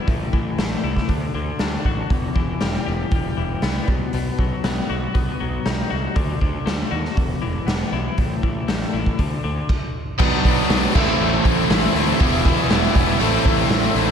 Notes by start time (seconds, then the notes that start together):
0.07 A1 A2, kick, open hi-hat
0.33 A1 E3, kick
0.58 A1 A3, snare, open hi-hat
0.83 C2 E4
0.96 kick, snare
1.08 D2 D3, kick, open hi-hat
1.34 D2 D3
1.59 D2 D4, snare, open hi-hat
1.85 A1 F#4, kick
2.10 E1 E2, kick, open hi-hat
2.35 E1 E3, kick
2.61 E1 G3, snare, open hi-hat
2.74 snare
2.86 E1 G4
3.11 E1 G3, kick, open hi-hat
3.37 E1 E3
3.62 C2 B3, snare, open hi-hat
3.88 B1 B2, kick
4.13 B1 B2, open hi-hat
4.39 B1 F#3, kick
4.64 B1 B3, snare, open hi-hat
4.90 B1 F#4
5.14 B1 B3, kick, open hi-hat
5.40 B1 F#3
5.66 B1 D#4, snare, open hi-hat
5.90 C2 F#4
6.16 D2 D3, kick, open hi-hat
6.41 D2 D3, kick
6.66 D2 A3, snare, open hi-hat
6.91 D#2 F#4
7.05 snare
7.17 E1 E2, kick, open hi-hat
7.42 E1 E3
7.67 E1 B3, snare, open hi-hat
7.92 B1 E4
8.18 A1 A2, kick, open hi-hat
8.43 A1 E3, kick
8.68 A1 A3, snare, open hi-hat
8.82 snare
8.93 A1 E4
9.06 kick
9.19 D2 D3, kick, open hi-hat
9.44 D2 D3
9.69 kick, crash
10.19 B1 B2 F#3 B3 D4, kick, crash
10.44 B1 F#3 B3 D4, kick, open hi-hat
10.69 B1 B2 F#3 B3 D4, snare, open hi-hat
10.95 A1 A2 E3 A3 C4 E4, kick, crash
11.19 A1 A2 E3 A3 C4 E4
11.44 A1 A3 C4 E4, kick, open hi-hat
11.70 A1 E3 A3 C4 E4, snare, open hi-hat
11.95 D2 A3 C4 E4, open hi-hat
12.20 E1 E2 B2 E3 G3 B3 E4, kick, open hi-hat
12.45 G3 B3 E4, kick, open hi-hat
12.70 E1 E3 G3 B3 E4, snare, open hi-hat
12.84 snare
12.95 E1 G3 B3 E4, kick, open hi-hat
13.20 A1 A2 E3 A3 C4 E4, open hi-hat
13.45 A1 A3 C4 E4, kick, open hi-hat
13.69 A1 E3 A3 C4 E4, snare, open hi-hat
13.95 A1 A3 C4 E4, open hi-hat